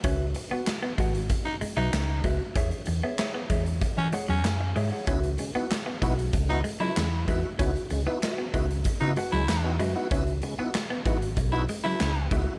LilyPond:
<<
  \new Staff \with { instrumentName = "Clean electric guitar" } { \time 4/4 \key cis \minor \tempo 4 = 95 <fis' b' e''>16 r8 <fis' b' fis''>16 r8 <fis' b' fis''>16 r4 <fis' b' e''>16 r8 <fis' b' e''>16 r16 | <gis' cis'' e''>16 r8 <gis' cis'' e''>16 <gis' cis'' e''>16 r16 <gis' cis'' e''>16 r8. <gis' cis'' fis''>16 r8. <gis' cis'' e''>16 <gis' cis'' fis''>16 | <fis' b' e''>16 r8 <fis' b' fis''>16 r8 <fis' b' fis''>16 r4 <fis' b' e''>16 r8 <fis' b' e''>16 r16 | <fis' b' e''>16 r8 <fis' b' e''>16 <fis' b' e''>16 r16 <fis' b' e''>16 r8. <fis' b' fis''>16 r8. <fis' b' e''>16 <fis' b' fis''>16 |
<fis' b' e''>16 r8 <fis' b' fis''>16 r8 <fis' b' fis''>16 r4 <fis' b' e''>16 r8 <fis' b' e''>16 r16 | }
  \new Staff \with { instrumentName = "Baritone saxophone" } { \time 4/4 \key cis \minor r2 r16 dis'16 r16 dis'8. r8 | r2 r16 cis'16 r16 cis'8. r8 | r2 r16 dis'16 r16 e'8. r8 | r2 r16 dis'16 r16 e'8. r8 |
r2 r16 e'16 r16 e'8. r8 | }
  \new Staff \with { instrumentName = "Tonewheel organ" } { \time 4/4 \key cis \minor r1 | r1 | <b dis' e' fis'>16 r16 <cis gis>16 <b dis' e' fis'>16 r8 <b dis' e' fis'>16 r8 <b dis' e' fis'>16 r16 <cis gis>16 <cis gis>16 r16 <b dis' e' fis'>16 <e' fis'>16 | <b dis' e' fis'>16 r16 <cis gis>16 <b dis' e' fis'>16 r8 <b dis' e' fis'>16 r8 <b dis' e' fis'>16 r16 <cis gis>16 r16 <b dis' e' fis'>16 <cis gis>16 <b dis' e' fis'>16 |
<b dis' e' fis'>16 r16 <cis gis>16 <b dis' e' fis'>16 r8 <b dis' e' fis'>16 r8 <b dis' e' fis'>16 r16 <cis gis>16 <cis gis>16 r16 <b dis' e' fis'>16 <e' fis'>16 | }
  \new Staff \with { instrumentName = "Clean electric guitar" } { \clef bass \time 4/4 \key cis \minor cis'16 r8 b16 r16 b16 gis16 r8. gis16 fis16 r8 gis16 r16 | e16 r8 b16 r16 b16 gis16 r8. gis16 fis16 r8 gis16 r16 | cis'16 r8 b16 r16 b16 gis16 r8. gis16 fis16 r8 gis16 r16 | cis'16 r8 b16 r16 b16 gis16 r8. gis16 fis16 r8 gis16 r16 |
cis'16 r8 b16 r16 b16 gis16 r8. gis16 fis16 r8 gis16 r16 | }
  \new Staff \with { instrumentName = "Fingered electric bass" } { \clef bass \time 4/4 \key cis \minor cis,8 r4 gis,,8 r8. b,,16 cis,8 cis,16 r16 | e,16 r16 e,16 r8. e,8 r16 e16 r16 e,16 fis,8 gis,16 r16 | cis,8 r4 b,,8 cis,8 r8 e,8 e,16 r16 | cis,16 r16 cis,16 r8. cis,8 r16 cis16 r16 cis,16 e,8 fis,16 r16 |
cis,8 r4 gis,,8 b,,8 r8 cis,8 cis,16 r16 | }
  \new DrumStaff \with { instrumentName = "Drums" } \drummode { \time 4/4 <hh bd>8 hh8 <hc hh sn>8 <hh bd>16 hh16 <hh bd>8 hh8 <hc hh sn>8 <hh bd>8 | <hh bd>16 hh16 hh8 <hc hh sn>8 <hh bd>16 hh16 <hh bd>8 hh8 <hc hh sn>8 hho8 | <hh bd>16 hh16 hh8 <hc hh sn>8 <hh bd>16 hh16 <hh bd>8 hh8 <hc hh sn>8 <hh bd>8 | <hh bd>16 hh16 hh8 <hc hh sn>8 <hh bd>16 hh16 <hh bd>8 hh8 <hc hh sn>8 hh8 |
<hh bd>16 hh16 hh8 <hc hh sn>8 <hh bd>16 hh16 <hh bd>8 hh8 <hc hh sn>8 <hh bd>8 | }
>>